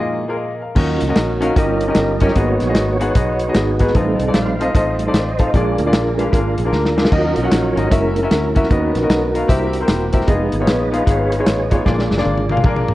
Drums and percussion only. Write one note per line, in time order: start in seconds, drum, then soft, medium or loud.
0.76 kick loud
0.76 crash loud
1.01 closed hi-hat medium
1.16 snare loud
1.16 closed hi-hat medium
1.42 closed hi-hat medium
1.56 kick loud
1.56 closed hi-hat loud
1.81 closed hi-hat medium
1.95 snare loud
1.95 closed hi-hat loud
2.20 kick loud
2.20 closed hi-hat medium
2.28 snare soft
2.35 kick loud
2.35 closed hi-hat medium
2.60 snare soft
2.60 closed hi-hat medium
2.75 snare loud
2.75 closed hi-hat loud
3.01 closed hi-hat medium
3.15 kick loud
3.15 closed hi-hat loud
3.40 closed hi-hat medium
3.55 snare loud
3.55 closed hi-hat loud
3.80 kick medium
3.80 closed hi-hat medium
3.88 snare soft
3.95 kick loud
3.95 closed hi-hat medium
4.19 closed hi-hat medium
4.34 snare loud
4.34 closed hi-hat loud
4.61 closed hi-hat medium
4.75 kick loud
4.75 closed hi-hat loud
4.99 closed hi-hat medium
5.14 snare loud
5.14 closed hi-hat loud
5.39 kick medium
5.39 closed hi-hat medium
5.54 kick loud
5.54 closed hi-hat medium
5.79 closed hi-hat medium
5.93 snare loud
5.93 closed hi-hat loud
6.19 closed hi-hat medium
6.33 kick loud
6.33 closed hi-hat loud
6.58 closed hi-hat medium
6.73 snare medium
6.85 snare medium
6.98 snare loud
7.05 snare loud
7.12 kick loud
7.12 crash medium
7.36 closed hi-hat medium
7.52 snare loud
7.52 closed hi-hat loud
7.77 closed hi-hat medium
7.91 kick loud
7.91 closed hi-hat loud
8.16 closed hi-hat medium
8.31 snare loud
8.31 closed hi-hat loud
8.56 kick loud
8.56 closed hi-hat medium
8.63 snare soft
8.71 kick loud
8.71 closed hi-hat medium
8.95 snare soft
8.95 closed hi-hat medium
9.10 snare loud
9.10 closed hi-hat loud
9.35 closed hi-hat medium
9.49 kick loud
9.49 closed hi-hat loud
9.73 closed hi-hat medium
9.88 snare loud
9.88 closed hi-hat loud
10.13 kick loud
10.13 closed hi-hat medium
10.21 snare soft
10.28 kick loud
10.28 closed hi-hat medium
10.52 closed hi-hat medium
10.67 snare loud
10.67 closed hi-hat loud
10.94 closed hi-hat medium
11.07 kick loud
11.07 closed hi-hat loud
11.32 closed hi-hat medium
11.46 snare loud
11.46 closed hi-hat loud
11.71 kick medium
11.71 closed hi-hat medium
11.86 kick loud
11.86 snare medium
11.99 snare medium
12.11 snare medium
12.18 snare medium
12.25 high tom medium
12.37 high tom medium
12.49 high tom medium
12.57 mid tom medium
12.64 kick loud
12.64 mid tom medium
12.76 mid tom medium
12.89 mid tom loud